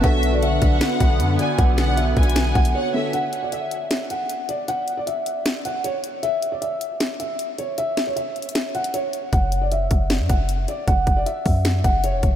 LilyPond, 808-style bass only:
\new Staff \with { instrumentName = "808-style bass" } { \clef bass \time 4/4 \key fis \minor \tempo 4 = 155 b,,4. b,,8 r8 b,,8 fis,8 r8 | b,,4. b,,4 b,,8 r4 | r1 | r1 |
r1 | r1 | fis,,4. fis,,8. fis,16 fis,,4 r8 | fis,,8 fis,,8 r8 fis,4 fis,,8. e,,16 fis,,8 | }